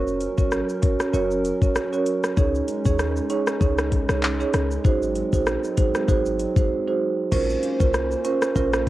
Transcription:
Already playing: 808-style bass F#1, analog synth pad F#3 C#4 A#4
0.07 shaker
0.21 closed hi-hat, shaker
0.38 808-style bass G#1, marimba C#4 F#4 A#4 C#5, kick, shaker
0.52 cross-stick, shaker
0.69 shaker
0.82 808-style bass F#1, marimba C#4 F#4 A#4 C#5, kick, closed hi-hat, shaker
1.00 cross-stick, shaker
1.13 808-style bass F#1, marimba C#4 F#4 A#4 C#5, shaker
1.31 shaker
1.45 closed hi-hat, shaker
1.62 808-style bass F1, marimba C#4 F#4 A#4 C#5, kick, shaker
1.75 cross-stick, shaker
1.92 marimba C#4 F#4 A#4 C#5, shaker
2.06 closed hi-hat, shaker
2.24 cross-stick, shaker
2.37 808-style bass C#2, analog synth pad G#3 C#4 D#4, marimba C#4 D#4 G#4 C#5, kick, shaker
2.55 shaker
2.68 closed hi-hat, shaker
2.85 808-style bass D#2, marimba C#4 D#4 G#4 C#5, kick, shaker
2.99 cross-stick, shaker
3.17 shaker
3.30 marimba C#4 D#4 G#4 C#5, closed hi-hat, shaker
3.47 cross-stick, shaker
3.61 808-style bass C#2, marimba C#4 D#4 G#4 C#5, kick, shaker
3.78 cross-stick, shaker
3.92 kick, closed hi-hat, shaker
4.09 808-style bass C2, marimba C#4 D#4 G#4 C#5, cross-stick, shaker
4.23 clap, shaker
4.40 marimba C#4 D#4 G#4 C#5, shaker
4.54 808-style bass C#2, cross-stick, closed hi-hat, shaker
4.71 shaker
4.84 808-style bass G#1, analog synth pad F#3 C4, marimba D#4 F#4 G#4 C5, kick, shaker
5.02 shaker
5.16 closed hi-hat, shaker
5.33 808-style bass A#1, marimba D#4 F#4 G#4 C5, kick, shaker
5.47 cross-stick, shaker
5.64 shaker
5.77 808-style bass G#1, marimba D#4 F#4 G#4 C5, kick, closed hi-hat, shaker
5.95 cross-stick, shaker
6.08 808-style bass G#1, marimba D#4 F#4 G#4 C5, kick, shaker
6.26 shaker
6.39 closed hi-hat, shaker
6.56 808-style bass F#1, marimba D#4 F#4 G#4 C5, kick, shaker
6.87 marimba D#4 F#4 G#4 C5
7.32 808-style bass A#1, analog synth pad A#3 C#4 C5, marimba C#4 F4 A#4 C5, kick, crash, shaker
7.50 shaker
7.63 closed hi-hat, shaker
7.80 808-style bass C2, marimba C#4 F4 A#4 C5, kick, shaker
7.94 cross-stick, shaker
8.11 shaker
8.25 marimba C#4 F4 A#4 C5, closed hi-hat, shaker
8.42 cross-stick, shaker
8.56 808-style bass A#1, marimba C#4 F4 A#4 C5, kick, shaker
8.73 cross-stick, shaker

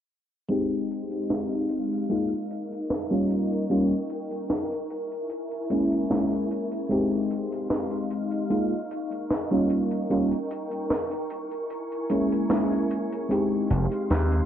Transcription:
0.49 fm electric piano G#3 C4 D#4 G4, string machine G#3 D#4 F5 C6, closed hi-hat
0.91 closed hi-hat
1.11 closed hi-hat
1.30 snare, closed hi-hat
1.52 closed hi-hat
1.69 closed hi-hat
1.92 closed hi-hat
2.09 fm electric piano G#3 A#3 D#4 F4, string machine D#4 A#4 C#6, closed hi-hat
2.51 closed hi-hat
2.72 closed hi-hat
2.90 snare, closed hi-hat
3.11 fm electric piano G3 A#3 C#4 F4, closed hi-hat
3.30 string machine G5, closed hi-hat
3.51 closed hi-hat
3.70 fm electric piano G3 A#3 C#4 F4, closed hi-hat
3.92 closed hi-hat
4.10 closed hi-hat
4.31 closed hi-hat
4.50 snare, closed hi-hat
4.72 closed hi-hat
4.90 string machine E4 G#5, closed hi-hat
5.12 closed hi-hat
5.30 closed hi-hat
5.51 closed hi-hat
5.70 fm electric piano G#3 A#3 C#4 E4, closed hi-hat
5.92 closed hi-hat
6.10 fm electric piano G#3 A#3 C#4 E4, snare, closed hi-hat
6.32 closed hi-hat
6.51 closed hi-hat
6.72 closed hi-hat
6.89 fm electric piano G#3 C4 D#4 G4, string machine G#3 D#4 F5 C6, closed hi-hat
7.31 closed hi-hat
7.52 closed hi-hat
7.70 snare, closed hi-hat
7.91 closed hi-hat
8.11 closed hi-hat
8.31 closed hi-hat
8.50 fm electric piano G#3 A#3 D#4 F4, string machine A#4 C#6, closed hi-hat
8.91 closed hi-hat
9.11 closed hi-hat
9.30 snare, closed hi-hat
9.51 fm electric piano G3 A#3 C#4 F4, closed hi-hat
9.70 string machine G5 C#6, closed hi-hat
9.91 closed hi-hat
10.10 fm electric piano G3 A#3 C#4 F4, closed hi-hat
10.32 closed hi-hat
10.51 closed hi-hat
10.71 closed hi-hat
10.90 snare, closed hi-hat
11.11 closed hi-hat
11.30 string machine E4 G#5, closed hi-hat
11.51 closed hi-hat
11.70 closed hi-hat
11.92 closed hi-hat
12.10 fm electric piano G#3 A#3 C#4 E4, closed hi-hat
12.32 closed hi-hat
12.49 fm electric piano G#3 A#3 C#4 E4, snare, closed hi-hat
12.72 closed hi-hat
12.91 closed hi-hat
13.12 closed hi-hat
13.29 fm electric piano G#3 C4 D#4 G4, string machine G#3 D#4 F5 C6, closed hi-hat
13.70 slap bass F1, closed hi-hat
13.92 closed hi-hat
14.10 slap bass D#2, snare, closed hi-hat
14.32 closed hi-hat

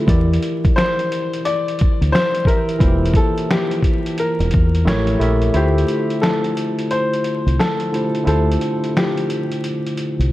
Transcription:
Already playing: tine electric piano D3 E4 F4 G4 A4
0.06 fingered electric bass E2, tine electric piano E3 E4 G4 A#4 D5, kick, closed hi-hat
0.33 closed hi-hat
0.43 closed hi-hat
0.65 kick, closed hi-hat
0.76 felt piano C5, finger snap, snare, closed hi-hat
0.99 closed hi-hat
1.12 closed hi-hat
1.33 closed hi-hat
1.45 felt piano D5, closed hi-hat
1.68 closed hi-hat
1.79 kick, closed hi-hat
2.01 fingered electric bass D2, closed hi-hat
2.12 felt piano C5, finger snap, snare, closed hi-hat
2.35 closed hi-hat
2.45 tine electric piano E3 E4 G4 A#4, felt piano A#4, kick, closed hi-hat
2.50 tine electric piano E5
2.69 closed hi-hat
2.79 fingered electric bass E1, tine electric piano E3 A#3 E4 F4, kick, closed hi-hat
2.83 tine electric piano C5
2.88 tine electric piano G4
3.05 closed hi-hat
3.14 felt piano A4, kick, closed hi-hat
3.38 closed hi-hat
3.50 felt piano G4, finger snap, snare, closed hi-hat
3.71 closed hi-hat
3.82 kick, closed hi-hat
4.06 closed hi-hat
4.18 felt piano A#4, closed hi-hat
4.40 fingered electric bass E1, closed hi-hat
4.51 fingered electric bass E2, kick, closed hi-hat
4.75 closed hi-hat
4.85 fingered electric bass A1, tine electric piano A3 E4 G4 A#4 C#5, finger snap, snare, closed hi-hat
5.07 closed hi-hat
5.19 fingered electric bass A#1, tine electric piano A3 E4 G4 A#4 E5, closed hi-hat
5.42 closed hi-hat
5.53 fingered electric bass D2, tine electric piano D3 A3 E4 F4 G4 C5, felt piano G4, closed hi-hat
5.78 closed hi-hat
5.88 closed hi-hat
6.10 closed hi-hat
6.22 felt piano A4, finger snap, snare, closed hi-hat
6.44 closed hi-hat
6.57 closed hi-hat
6.79 closed hi-hat
6.91 felt piano C5, closed hi-hat
7.13 closed hi-hat
7.24 closed hi-hat
7.46 fingered electric bass C2, closed hi-hat
7.59 felt piano A4, finger snap, snare, closed hi-hat
7.80 closed hi-hat
7.92 tine electric piano D3 A3 E4 F4 G4 C5, closed hi-hat
8.15 closed hi-hat
8.24 fingered electric bass D2, tine electric piano D3 A3 E4 F4 G4 C5, felt piano A4, closed hi-hat
8.52 closed hi-hat
8.61 closed hi-hat
8.84 closed hi-hat
8.97 felt piano G4, finger snap, snare, closed hi-hat
9.17 closed hi-hat
9.30 closed hi-hat
9.52 closed hi-hat
9.64 closed hi-hat
9.87 closed hi-hat
9.97 closed hi-hat
10.19 fingered electric bass C2, closed hi-hat

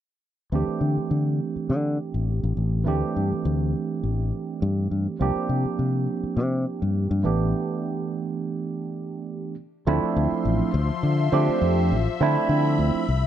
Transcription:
0.52 fingered electric bass D2, tine electric piano E3 A3 C4 D4 G4
0.68 muted fingered electric bass stroke
0.81 fingered electric bass D3
0.97 muted fingered electric bass stroke
1.11 fingered electric bass D3
1.56 muted fingered electric bass stroke
1.70 fingered electric bass D3
2.14 fingered electric bass A1
2.43 fingered electric bass A1
2.57 fingered electric bass A1
2.84 fingered electric bass D2, tine electric piano E3 A3 C4 D4 G4
3.16 fingered electric bass G2
3.32 muted fingered electric bass stroke
3.45 fingered electric bass D2
4.03 fingered electric bass A1
4.62 fingered electric bass G2
4.91 fingered electric bass G2
5.19 fingered electric bass C2, tine electric piano F3 A#3 C4 D4 G4
5.36 muted fingered electric bass stroke
5.49 fingered electric bass C3
5.65 muted fingered electric bass stroke
5.79 fingered electric bass C3
6.23 muted fingered electric bass stroke
6.37 fingered electric bass C3
6.82 fingered electric bass G2
7.11 fingered electric bass G2
7.24 fingered electric bass A1, tine electric piano E3 A3 B3 D4 G4
9.87 fingered electric bass D2, tine electric piano F3 A3 C4 D4 E4, analog synth pad F3 E5 C6
10.03 muted fingered electric bass stroke
10.16 fingered electric bass D2
10.32 muted fingered electric bass stroke
10.45 fingered electric bass A1
10.74 fingered electric bass D2
11.03 fingered electric bass D3
11.32 fingered electric bass D3, tine electric piano F3 A3 C4 D4 G4
11.49 muted fingered electric bass stroke
11.62 fingered electric bass F2
11.91 fingered electric bass A1
12.07 muted fingered electric bass stroke
12.21 fingered electric bass D3, tine electric piano F3 A3 C4 D4 E4, analog synth pad B5
12.49 fingered electric bass D3
12.79 fingered electric bass D2
12.95 muted fingered electric bass stroke
13.09 fingered electric bass C2

